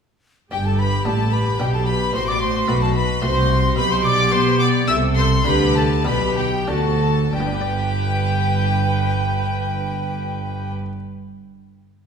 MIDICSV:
0, 0, Header, 1, 8, 480
1, 0, Start_track
1, 0, Key_signature, 1, "major"
1, 0, Tempo, 544959
1, 455, Time_signature, 3, 2, 24, 8
1, 3813, Tempo, 577478
1, 5253, Tempo, 638298
1, 6213, Tempo, 656455
1, 9669, End_track
2, 0, Start_track
2, 0, Title_t, "Flute"
2, 0, Program_c, 0, 73
2, 454, Note_on_c, 0, 79, 88
2, 578, Note_on_c, 0, 81, 77
2, 591, Note_off_c, 0, 79, 0
2, 696, Note_on_c, 0, 83, 83
2, 710, Note_off_c, 0, 81, 0
2, 929, Note_on_c, 0, 81, 77
2, 942, Note_off_c, 0, 83, 0
2, 1175, Note_on_c, 0, 83, 88
2, 1188, Note_off_c, 0, 81, 0
2, 1405, Note_off_c, 0, 83, 0
2, 1411, Note_on_c, 0, 79, 82
2, 1464, Note_off_c, 0, 79, 0
2, 1529, Note_on_c, 0, 81, 72
2, 1636, Note_off_c, 0, 81, 0
2, 1641, Note_on_c, 0, 83, 82
2, 1879, Note_off_c, 0, 83, 0
2, 1884, Note_on_c, 0, 84, 100
2, 2009, Note_on_c, 0, 86, 89
2, 2023, Note_off_c, 0, 84, 0
2, 2121, Note_off_c, 0, 86, 0
2, 2126, Note_on_c, 0, 84, 84
2, 2370, Note_on_c, 0, 83, 86
2, 2383, Note_off_c, 0, 84, 0
2, 2488, Note_on_c, 0, 81, 79
2, 2501, Note_off_c, 0, 83, 0
2, 2604, Note_off_c, 0, 81, 0
2, 2609, Note_on_c, 0, 83, 86
2, 2663, Note_off_c, 0, 83, 0
2, 2848, Note_on_c, 0, 84, 94
2, 3313, Note_off_c, 0, 84, 0
2, 3319, Note_on_c, 0, 83, 105
2, 3434, Note_off_c, 0, 83, 0
2, 3439, Note_on_c, 0, 84, 88
2, 3492, Note_off_c, 0, 84, 0
2, 3565, Note_on_c, 0, 86, 99
2, 3806, Note_on_c, 0, 84, 95
2, 3819, Note_off_c, 0, 86, 0
2, 4026, Note_off_c, 0, 84, 0
2, 4031, Note_on_c, 0, 86, 100
2, 4085, Note_off_c, 0, 86, 0
2, 4271, Note_on_c, 0, 88, 98
2, 4325, Note_off_c, 0, 88, 0
2, 4516, Note_on_c, 0, 84, 92
2, 4749, Note_off_c, 0, 84, 0
2, 4754, Note_on_c, 0, 83, 103
2, 4809, Note_off_c, 0, 83, 0
2, 4998, Note_on_c, 0, 81, 89
2, 5055, Note_off_c, 0, 81, 0
2, 5246, Note_on_c, 0, 83, 89
2, 5481, Note_on_c, 0, 79, 89
2, 5493, Note_off_c, 0, 83, 0
2, 5720, Note_on_c, 0, 81, 79
2, 5731, Note_off_c, 0, 79, 0
2, 6207, Note_off_c, 0, 81, 0
2, 6212, Note_on_c, 0, 79, 80
2, 8685, Note_off_c, 0, 79, 0
2, 9669, End_track
3, 0, Start_track
3, 0, Title_t, "Violin section"
3, 0, Program_c, 1, 48
3, 454, Note_on_c, 1, 79, 98
3, 567, Note_off_c, 1, 79, 0
3, 580, Note_on_c, 1, 81, 86
3, 692, Note_on_c, 1, 83, 98
3, 698, Note_off_c, 1, 81, 0
3, 930, Note_off_c, 1, 83, 0
3, 941, Note_on_c, 1, 81, 95
3, 1171, Note_on_c, 1, 83, 92
3, 1174, Note_off_c, 1, 81, 0
3, 1411, Note_on_c, 1, 79, 90
3, 1414, Note_off_c, 1, 83, 0
3, 1531, Note_on_c, 1, 81, 89
3, 1533, Note_off_c, 1, 79, 0
3, 1648, Note_on_c, 1, 83, 102
3, 1653, Note_off_c, 1, 81, 0
3, 1891, Note_off_c, 1, 83, 0
3, 1893, Note_on_c, 1, 84, 102
3, 2011, Note_off_c, 1, 84, 0
3, 2011, Note_on_c, 1, 86, 96
3, 2123, Note_on_c, 1, 84, 101
3, 2129, Note_off_c, 1, 86, 0
3, 2348, Note_on_c, 1, 83, 103
3, 2366, Note_off_c, 1, 84, 0
3, 2477, Note_on_c, 1, 81, 96
3, 2479, Note_off_c, 1, 83, 0
3, 2592, Note_on_c, 1, 83, 107
3, 2600, Note_off_c, 1, 81, 0
3, 2832, Note_on_c, 1, 84, 105
3, 2834, Note_off_c, 1, 83, 0
3, 3316, Note_on_c, 1, 83, 121
3, 3320, Note_off_c, 1, 84, 0
3, 3438, Note_on_c, 1, 84, 106
3, 3440, Note_off_c, 1, 83, 0
3, 3558, Note_on_c, 1, 86, 119
3, 3564, Note_off_c, 1, 84, 0
3, 3798, Note_on_c, 1, 84, 115
3, 3807, Note_off_c, 1, 86, 0
3, 4033, Note_on_c, 1, 86, 111
3, 4037, Note_off_c, 1, 84, 0
3, 4099, Note_off_c, 1, 86, 0
3, 4265, Note_on_c, 1, 88, 112
3, 4332, Note_off_c, 1, 88, 0
3, 4505, Note_on_c, 1, 84, 116
3, 4747, Note_off_c, 1, 84, 0
3, 4750, Note_on_c, 1, 83, 119
3, 4998, Note_on_c, 1, 81, 111
3, 4999, Note_off_c, 1, 83, 0
3, 5249, Note_on_c, 1, 83, 113
3, 5251, Note_off_c, 1, 81, 0
3, 5482, Note_on_c, 1, 79, 102
3, 5484, Note_off_c, 1, 83, 0
3, 5716, Note_off_c, 1, 79, 0
3, 5716, Note_on_c, 1, 81, 94
3, 6205, Note_on_c, 1, 79, 98
3, 6210, Note_off_c, 1, 81, 0
3, 8679, Note_off_c, 1, 79, 0
3, 9669, End_track
4, 0, Start_track
4, 0, Title_t, "Violin section"
4, 0, Program_c, 2, 48
4, 457, Note_on_c, 2, 67, 87
4, 505, Note_off_c, 2, 67, 0
4, 573, Note_on_c, 2, 69, 77
4, 691, Note_on_c, 2, 71, 81
4, 692, Note_off_c, 2, 69, 0
4, 934, Note_off_c, 2, 71, 0
4, 934, Note_on_c, 2, 69, 80
4, 1168, Note_on_c, 2, 71, 84
4, 1171, Note_off_c, 2, 69, 0
4, 1412, Note_off_c, 2, 71, 0
4, 1412, Note_on_c, 2, 67, 81
4, 1533, Note_on_c, 2, 69, 79
4, 1534, Note_off_c, 2, 67, 0
4, 1581, Note_off_c, 2, 69, 0
4, 1654, Note_on_c, 2, 71, 84
4, 1889, Note_off_c, 2, 71, 0
4, 1890, Note_on_c, 2, 72, 92
4, 2011, Note_on_c, 2, 74, 80
4, 2012, Note_off_c, 2, 72, 0
4, 2059, Note_off_c, 2, 74, 0
4, 2133, Note_on_c, 2, 72, 82
4, 2360, Note_on_c, 2, 71, 86
4, 2366, Note_off_c, 2, 72, 0
4, 2481, Note_on_c, 2, 69, 83
4, 2484, Note_off_c, 2, 71, 0
4, 2604, Note_on_c, 2, 71, 94
4, 2605, Note_off_c, 2, 69, 0
4, 2839, Note_on_c, 2, 72, 99
4, 2845, Note_off_c, 2, 71, 0
4, 3314, Note_off_c, 2, 72, 0
4, 3322, Note_on_c, 2, 71, 106
4, 3371, Note_off_c, 2, 71, 0
4, 3446, Note_on_c, 2, 72, 95
4, 3495, Note_off_c, 2, 72, 0
4, 3565, Note_on_c, 2, 74, 97
4, 3805, Note_off_c, 2, 74, 0
4, 3807, Note_on_c, 2, 72, 100
4, 4041, Note_off_c, 2, 72, 0
4, 4045, Note_on_c, 2, 74, 100
4, 4274, Note_off_c, 2, 74, 0
4, 4274, Note_on_c, 2, 76, 98
4, 4340, Note_off_c, 2, 76, 0
4, 4519, Note_on_c, 2, 72, 100
4, 4585, Note_off_c, 2, 72, 0
4, 4757, Note_on_c, 2, 71, 106
4, 4998, Note_off_c, 2, 71, 0
4, 5008, Note_on_c, 2, 69, 84
4, 5075, Note_off_c, 2, 69, 0
4, 5259, Note_on_c, 2, 71, 93
4, 5482, Note_on_c, 2, 67, 89
4, 5483, Note_off_c, 2, 71, 0
4, 5542, Note_off_c, 2, 67, 0
4, 5724, Note_on_c, 2, 69, 89
4, 6204, Note_off_c, 2, 69, 0
4, 6216, Note_on_c, 2, 67, 83
4, 8689, Note_off_c, 2, 67, 0
4, 9669, End_track
5, 0, Start_track
5, 0, Title_t, "Viola section"
5, 0, Program_c, 3, 48
5, 451, Note_on_c, 3, 67, 71
5, 1379, Note_off_c, 3, 67, 0
5, 1408, Note_on_c, 3, 67, 72
5, 1881, Note_off_c, 3, 67, 0
5, 1888, Note_on_c, 3, 66, 74
5, 2824, Note_off_c, 3, 66, 0
5, 2835, Note_on_c, 3, 66, 78
5, 3312, Note_off_c, 3, 66, 0
5, 3315, Note_on_c, 3, 67, 86
5, 4270, Note_on_c, 3, 69, 90
5, 4272, Note_off_c, 3, 67, 0
5, 4753, Note_off_c, 3, 69, 0
5, 4757, Note_on_c, 3, 67, 85
5, 5243, Note_off_c, 3, 67, 0
5, 5255, Note_on_c, 3, 67, 87
5, 5714, Note_off_c, 3, 67, 0
5, 5728, Note_on_c, 3, 66, 79
5, 6035, Note_off_c, 3, 66, 0
5, 6219, Note_on_c, 3, 71, 79
5, 8692, Note_off_c, 3, 71, 0
5, 9669, End_track
6, 0, Start_track
6, 0, Title_t, "Harpsichord"
6, 0, Program_c, 4, 6
6, 452, Note_on_c, 4, 43, 64
6, 900, Note_off_c, 4, 43, 0
6, 926, Note_on_c, 4, 59, 51
6, 928, Note_on_c, 4, 45, 59
6, 931, Note_on_c, 4, 62, 51
6, 934, Note_on_c, 4, 67, 53
6, 1275, Note_off_c, 4, 59, 0
6, 1279, Note_off_c, 4, 62, 0
6, 1281, Note_off_c, 4, 67, 0
6, 1377, Note_off_c, 4, 45, 0
6, 1406, Note_on_c, 4, 47, 64
6, 1407, Note_on_c, 4, 59, 53
6, 1410, Note_on_c, 4, 62, 52
6, 1410, Note_on_c, 4, 67, 57
6, 1755, Note_off_c, 4, 59, 0
6, 1756, Note_off_c, 4, 62, 0
6, 1757, Note_off_c, 4, 67, 0
6, 1854, Note_off_c, 4, 47, 0
6, 1878, Note_on_c, 4, 45, 65
6, 2327, Note_off_c, 4, 45, 0
6, 2360, Note_on_c, 4, 57, 55
6, 2361, Note_on_c, 4, 47, 65
6, 2362, Note_on_c, 4, 60, 57
6, 2370, Note_on_c, 4, 66, 57
6, 2707, Note_off_c, 4, 57, 0
6, 2708, Note_off_c, 4, 60, 0
6, 2714, Note_off_c, 4, 66, 0
6, 2807, Note_off_c, 4, 47, 0
6, 2835, Note_on_c, 4, 57, 58
6, 2838, Note_on_c, 4, 48, 74
6, 2839, Note_on_c, 4, 60, 55
6, 2845, Note_on_c, 4, 66, 62
6, 3186, Note_off_c, 4, 57, 0
6, 3188, Note_off_c, 4, 60, 0
6, 3192, Note_off_c, 4, 66, 0
6, 3288, Note_off_c, 4, 48, 0
6, 3313, Note_on_c, 4, 47, 75
6, 3770, Note_off_c, 4, 47, 0
6, 3800, Note_on_c, 4, 59, 71
6, 3811, Note_on_c, 4, 71, 64
6, 4145, Note_off_c, 4, 59, 0
6, 4147, Note_off_c, 4, 71, 0
6, 4268, Note_on_c, 4, 60, 56
6, 4270, Note_on_c, 4, 48, 75
6, 4276, Note_on_c, 4, 64, 62
6, 4281, Note_on_c, 4, 69, 62
6, 4719, Note_off_c, 4, 60, 0
6, 4720, Note_off_c, 4, 48, 0
6, 4723, Note_off_c, 4, 64, 0
6, 4725, Note_off_c, 4, 69, 0
6, 4743, Note_on_c, 4, 50, 76
6, 5213, Note_off_c, 4, 50, 0
6, 5241, Note_on_c, 4, 47, 74
6, 5241, Note_on_c, 4, 59, 55
6, 5246, Note_on_c, 4, 62, 60
6, 5250, Note_on_c, 4, 67, 65
6, 5584, Note_off_c, 4, 59, 0
6, 5587, Note_off_c, 4, 62, 0
6, 5589, Note_off_c, 4, 67, 0
6, 5687, Note_off_c, 4, 47, 0
6, 5714, Note_on_c, 4, 50, 72
6, 5716, Note_on_c, 4, 60, 54
6, 5718, Note_on_c, 4, 62, 57
6, 5724, Note_on_c, 4, 66, 55
6, 6179, Note_off_c, 4, 50, 0
6, 6180, Note_off_c, 4, 60, 0
6, 6181, Note_off_c, 4, 62, 0
6, 6184, Note_off_c, 4, 66, 0
6, 6208, Note_on_c, 4, 55, 67
6, 6260, Note_on_c, 4, 59, 67
6, 6311, Note_on_c, 4, 62, 64
6, 6361, Note_on_c, 4, 67, 70
6, 6413, Note_on_c, 4, 74, 65
6, 8682, Note_off_c, 4, 55, 0
6, 8733, Note_off_c, 4, 59, 0
6, 8784, Note_off_c, 4, 62, 0
6, 8835, Note_off_c, 4, 67, 0
6, 8886, Note_off_c, 4, 74, 0
6, 9669, End_track
7, 0, Start_track
7, 0, Title_t, "Cello section"
7, 0, Program_c, 5, 48
7, 453, Note_on_c, 5, 43, 77
7, 902, Note_off_c, 5, 43, 0
7, 933, Note_on_c, 5, 45, 72
7, 1405, Note_off_c, 5, 45, 0
7, 1412, Note_on_c, 5, 47, 72
7, 1883, Note_off_c, 5, 47, 0
7, 1889, Note_on_c, 5, 45, 83
7, 2359, Note_off_c, 5, 45, 0
7, 2368, Note_on_c, 5, 47, 83
7, 2837, Note_off_c, 5, 47, 0
7, 2844, Note_on_c, 5, 48, 78
7, 3316, Note_off_c, 5, 48, 0
7, 3323, Note_on_c, 5, 47, 89
7, 3800, Note_off_c, 5, 47, 0
7, 3804, Note_on_c, 5, 59, 92
7, 4272, Note_on_c, 5, 48, 91
7, 4273, Note_off_c, 5, 59, 0
7, 4744, Note_off_c, 5, 48, 0
7, 4752, Note_on_c, 5, 50, 91
7, 5241, Note_off_c, 5, 50, 0
7, 5247, Note_on_c, 5, 47, 90
7, 5719, Note_on_c, 5, 50, 74
7, 5720, Note_off_c, 5, 47, 0
7, 6202, Note_off_c, 5, 50, 0
7, 6215, Note_on_c, 5, 43, 81
7, 8688, Note_off_c, 5, 43, 0
7, 9669, End_track
8, 0, Start_track
8, 0, Title_t, "Double bass section"
8, 0, Program_c, 6, 48
8, 453, Note_on_c, 6, 31, 79
8, 902, Note_off_c, 6, 31, 0
8, 934, Note_on_c, 6, 33, 78
8, 1406, Note_off_c, 6, 33, 0
8, 1411, Note_on_c, 6, 35, 80
8, 1882, Note_off_c, 6, 35, 0
8, 1891, Note_on_c, 6, 33, 85
8, 2359, Note_off_c, 6, 33, 0
8, 2370, Note_on_c, 6, 35, 84
8, 2838, Note_off_c, 6, 35, 0
8, 2845, Note_on_c, 6, 36, 90
8, 3317, Note_off_c, 6, 36, 0
8, 3329, Note_on_c, 6, 35, 93
8, 3803, Note_off_c, 6, 35, 0
8, 3811, Note_on_c, 6, 47, 90
8, 4276, Note_on_c, 6, 36, 93
8, 4277, Note_off_c, 6, 47, 0
8, 4746, Note_off_c, 6, 36, 0
8, 4754, Note_on_c, 6, 38, 99
8, 5242, Note_off_c, 6, 38, 0
8, 5251, Note_on_c, 6, 35, 90
8, 5721, Note_off_c, 6, 35, 0
8, 5722, Note_on_c, 6, 38, 86
8, 6203, Note_off_c, 6, 38, 0
8, 6214, Note_on_c, 6, 31, 84
8, 8687, Note_off_c, 6, 31, 0
8, 9669, End_track
0, 0, End_of_file